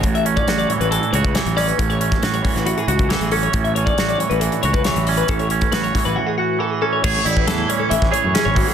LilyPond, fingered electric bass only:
\new Staff \with { instrumentName = "Fingered electric bass" } { \clef bass \time 4/4 \key a \major \tempo 4 = 137 a,,4 a,,8 r16 a,,8 r16 cis,8. a,,8. | a,,4 a,,8 r16 a,,8 r16 cis,8. a,,8. | a,,4 a,,8 r16 a,,8 r16 cis,8. a,,8. | a,,4 a,,8 r16 a,,16 r2 |
a,,16 r16 a,,8 e,8 r8 a,,16 a,,16 r16 fis,16 r16 gis,,8 r16 | }